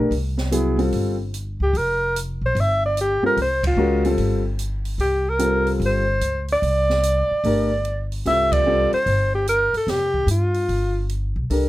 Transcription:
Already playing: A#1 D4 G4
0.00 A#4
0.11 C2, open hi-hat
0.38 snare
0.51 F#3 B3 E4 G#4, closed hi-hat
0.78 G3 C4 F4 A4, open hi-hat
0.92 G1, open hi-hat
1.34 closed hi-hat
1.60 C#2 G4
1.73 F1, open hi-hat
1.77 A#4
2.16 closed hi-hat
2.41 A#1
2.46 C5
2.55 G1, open hi-hat
2.60 E5
2.86 D5
2.97 G4, closed hi-hat
3.22 G3 C4 F4 A4 A#4, muted upright bass stroke
3.37 C2, open hi-hat
3.41 C5
3.63 F4, kick, ride
3.76 C#2 G#3 C#4 F#4 A#4
4.05 G3 C4 F4 A4, open hi-hat
4.18 G1, open hi-hat
4.59 closed hi-hat
4.85 open hi-hat
4.98 C2 G4, open hi-hat
5.29 A#4
5.39 G3 C4 F4 A4, closed hi-hat
5.67 open hi-hat
5.80 G1, open hi-hat
5.86 C5
6.21 C#2, closed hi-hat
6.48 D5, open hi-hat
6.62 C2, open hi-hat
6.90 snare
7.03 closed hi-hat
7.31 muted upright bass stroke
7.44 G1 A3 D4 G4 A#4, open hi-hat
7.85 closed hi-hat
8.12 open hi-hat
8.25 C2 G3 C4 F4 A4 E5, open hi-hat
8.52 D5, kick, ride
8.67 G3 C4 F4 A4
8.93 C5, muted upright bass stroke, open hi-hat
9.06 G1, open hi-hat
9.34 G4
9.47 A#4, closed hi-hat
9.73 A4, muted upright bass stroke, open hi-hat
9.87 F1 G4, snare, open hi-hat
10.14 kick
10.27 G2 F4, closed hi-hat
10.54 open hi-hat
10.69 G1, open hi-hat
11.09 closed hi-hat
11.36 B1
11.50 C2 D4 G4 A4 A#4, open hi-hat

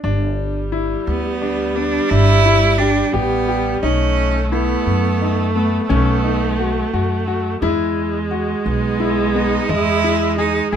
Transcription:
0.04 G1 G3 D4
0.72 E4
1.07 D2 B3
1.42 D4
1.75 B3 D4
2.10 G1 D4 E4
2.46 E4
2.78 D4 G4
3.13 A1 B3 G4
3.48 G4
3.82 B1 A3 C#4 D#4
4.51 B3 E4
4.86 F#2
5.22 D#4
5.54 A3 B3
5.89 B1 B3 C#4
6.24 D#4
6.59 F#4
6.93 F#2 F#4
7.27 F#4
7.61 E2 G#3 E4, frame drum
8.31 F#4, frame drum
8.66 B1 B3
9.00 E4
9.35 B3 D#4, frame drum
9.69 E2 E4 D#5, frame drum
10.04 E4
10.38 D#4 G#4, frame drum
10.72 B1 G#4

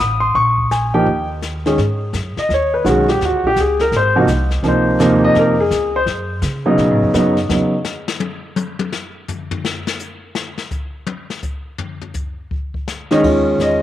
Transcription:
Already playing: D#6
0.00 A1
0.20 C6
0.35 A#1 C#6, brush sweep, kick
0.58 kick
0.71 G#5, snare, hi-hat pedal
0.94 F3 A#3 D#4 G4 G5
1.06 D#2, brush sweep, kick
1.42 snare, hi-hat pedal
1.66 D#3 G#3 C#4 G#4, snare
1.78 G#2, brush sweep, kick, snare
2.13 F#2, kick, snare, hi-hat pedal
2.37 D#5, muted upright bass stroke, snare
2.49 D#2, brush sweep, kick, snare
2.54 C#5
2.74 B4
2.85 B1 D#3 G#3 C#4 F#4, kick, snare, hi-hat pedal
2.89 G#4
3.08 G4, snare
3.21 D#2, brush sweep, kick, snare
3.25 F#4
3.32 C#2
3.44 A#1 G4
3.56 C#2, kick, snare, hi-hat pedal
3.61 G#4
3.79 A#4, snare
3.92 G#1, brush sweep, kick, snare
3.96 C5
4.16 C3 F3 A#3 D#4 F#4
4.27 C2, snare, hi-hat pedal
4.51 snare
4.63 C#2 C3 F3 A#3 D#4, brush sweep, kick, snare
4.68 C5
4.99 D#2 C3 F3 A#3 D#4, kick, snare, hi-hat pedal
5.24 D#5
5.35 F2 A#4, brush sweep, kick, snare
5.60 G#4
5.71 C#2, kick, snare, hi-hat pedal
5.96 C5
6.06 F#2, brush sweep, kick, snare
6.42 C#3, snare, hi-hat pedal
6.66 C#3 F#3 B3 D#4
6.78 B2, brush sweep, kick, snare
6.91 A2
7.02 F#2
7.14 F#2 C#3 F#3 B3 D#4, kick, snare, hi-hat pedal
7.37 snare
7.49 E2 C#3 F#3 B3 D#4, snare
7.85 snare, hi-hat pedal
8.08 snare
8.20 high tom
8.56 hi-hat pedal, high tom
8.79 high tom
8.92 snare
9.28 floor tom, hi-hat pedal
9.51 floor tom
9.65 snare
9.87 snare
9.99 hi-hat pedal
10.35 snare
10.58 snare
10.71 kick, hi-hat pedal
11.07 high tom
11.30 snare
11.43 kick, hi-hat pedal
11.78 floor tom
12.02 floor tom
12.14 kick, hi-hat pedal
12.51 kick
12.74 kick
12.88 snare, hi-hat pedal
13.11 D#3 G#3 C#4 D#4, snare
13.23 D#2 D#3 G#3 C#4 F4, brush sweep, kick, crash
13.59 E2 D#5, snare, hi-hat pedal

